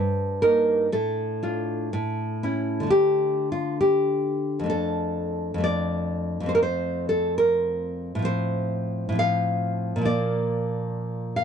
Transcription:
Already playing: G2 C5
0.42 A#3 D#4 A#4
0.92 A2 A4
1.43 D4 F4
1.93 A2
2.43 C#4 E4
2.80 D3 A3
2.87 D4 G4
3.52 F4
3.81 G4
4.59 F2
4.64 A3 D4
4.70 A4
5.54 F2 A3
5.60 D4 D5
6.40 F2 A3
6.46 C4 C5
6.55 A#4
6.63 C5
7.09 A4
7.38 A#4
8.15 A2 F3
8.22 C4 C5
9.09 A2 F3
9.15 C4 F5
9.96 A#2 F3
10.02 A#3 D5
11.36 F5

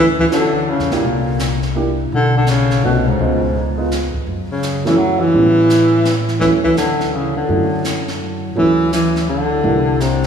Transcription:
Already playing: D2
0.19 E3, kick
0.31 D3 C#4 E4 F#4 A4, snare, hi-hat pedal
0.70 C#3
0.79 E2, snare
0.91 C#2 A#2 A#3 D4 E4 G4, snare
1.03 C2, brush sweep
1.39 snare, hi-hat pedal
1.62 snare
1.75 A#3 D4 E4 G4
2.11 B1 D3, brush sweep
2.37 D3
2.47 C#3, snare, hi-hat pedal
2.71 snare
2.84 C2 B2 A3 C#4 D4 F#4
3.08 G#2
3.19 C#2 G#3 B3 D#4 F4, brush sweep
3.77 G#3 B3 D#4 F4
3.92 snare, hi-hat pedal
4.14 muted upright bass stroke, kick
4.27 F#2, brush sweep
4.51 C#3
4.63 snare, hi-hat pedal
4.85 E3 F#3 A3 C#4 E4, snare
4.98 F#3
5.20 E3
5.33 A1 G3 B3 C#4 E4, brush sweep
5.70 snare, hi-hat pedal
6.05 snare, hi-hat pedal
6.29 snare
6.40 D2 E3 F#3 A3 C#4 E4, brush sweep, snare
6.64 E3, kick
6.77 D3, snare, hi-hat pedal
7.00 snare
7.14 C#3
7.37 D3
7.48 F#2 F#3 A3 C#4 E4, brush sweep
7.85 snare, hi-hat pedal
8.08 snare
8.56 D2 E3 F#3 A3 C#4 E4, brush sweep
8.93 E3, snare, hi-hat pedal
9.16 snare
9.29 D3
9.64 C2 G3 A#3 D4 E4, brush sweep
10.00 C3, snare, hi-hat pedal
10.24 snare

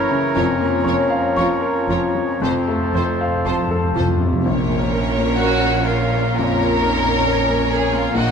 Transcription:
Already playing: F#2 E3 A#3 C#4 E4 A#4 C#5 E5 A#5 C#6
0.11 C#3
0.35 F1 F2 F3 F4 A#4 C#5
0.60 A#3
0.84 F1 F2 F4 A#4 C#5
1.10 F5
1.36 F1 F2 F4 A#4 C#5 C#6
1.61 A#4
1.89 F1 F2 F4 A#4 C#5
2.14 F3
2.41 F1 F2 C4 F4 A4 C5
2.51 F2
2.60 F2
2.67 F2 A3
2.77 F2
2.86 F2
2.94 F1 F2 F4 C5
2.98 A4
3.03 F2
3.11 F2
3.20 F2 F5
3.27 F2
3.35 F2
3.44 F1 F2 F4 A4 C5 A5 C6
3.52 F2
3.60 F2
3.68 F2 A4
3.76 F2
3.84 F2
3.92 F1 F2 F4
3.96 F2 A4 C5
4.09 F2
4.17 F2 C3
4.25 F2
4.32 F2
4.42 A#1 A#2 C#4 A#4 C#5
4.68 A#3
4.91 A#4
5.18 A#3
5.35 F#4 F#5
5.40 A#4
5.64 A#3
5.85 F4 A#4 F5
6.14 A#3
6.35 F2 C#4 F4 A#4 C#5 A#5
6.60 A#3
6.82 D#4 A#4
7.05 A#3
7.27 C#4 A#4
7.49 A#3
7.71 G#4 A#4 G#5
7.93 A#3 F4 F5
8.14 A#1 A#2 A#3 F#4 A#4 D#5 F#5

